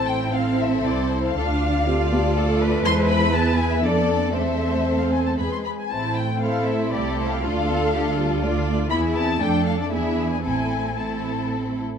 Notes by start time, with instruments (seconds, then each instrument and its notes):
Already playing: double bass section A1, viola section C4 E4, cello section C4, violin section A4 C5
0.08 violin section G5
0.34 violin section A4 C5 F5
0.60 violin section E5
0.84 double bass section C2, viola section E4, violin section D5
1.11 violin section C5
1.24 violin section F5
1.36 double bass section D2, cello section D4, viola section D4 F4, violin section A4
1.60 violin section D5
1.85 viola section C4 G4, cello section F4, violin section A4
2.11 viola section B3
2.36 viola section A3 F4, cello section A4
2.61 cello section B4
2.85 double bass section E2, viola section G#3 E4, violin section C5 C6
3.10 violin section B5
3.34 viola section B3, violin section G#4 B4 A5
3.59 violin section G#5
3.72 violin section E5
3.84 double bass section F2, viola section D4, cello section A4, violin section A4 D5
4.18 violin section D5
4.35 double bass section E2, viola section A3 C4, cello section C4, violin section A4 C5 E5
5.00 violin section F5
5.13 violin section G#5
5.26 violin section A5
5.38 double bass section E2, viola section G#3 B3, violin section G#4 B4 B5
5.52 violin section C6
5.65 violin section B5
5.79 violin section G#5
5.90 double bass section A1, viola section A3 C4, violin section E4 C5 A5
6.16 violin section G5
6.42 viola section C4, violin section E4 C5 F5, cello section A4
6.67 violin section E5
6.93 double bass section C2, cello section G4, violin section A4 D5
7.19 violin section C5
7.32 violin section F5
7.45 double bass section D2, viola section A3 D4, cello section F4, violin section F4 A4
7.70 viola section B3, cello section A4
7.94 viola section A3 F4, violin section D4, cello section G4
8.18 viola section G3, cello section F4
8.43 viola section A3 F4, violin section D4 D5
8.91 double bass section E2, viola section E3 B3, cello section E4, violin section E4 G#4 B5
9.16 viola section C4, violin section A5
9.41 double bass section F2, viola section A3 D4, cello section D4, violin section D4 A4 G5
9.66 violin section F5
9.80 violin section D5
9.92 double bass section E2, viola section B3 D4, violin section E4 G#4 E5, cello section E4
10.32 violin section G#5
10.44 double bass section A1, viola section A3 C4, cello section C4, violin section E4 A4 G#5
10.98 viola section A3 C4, violin section E4 A4 A5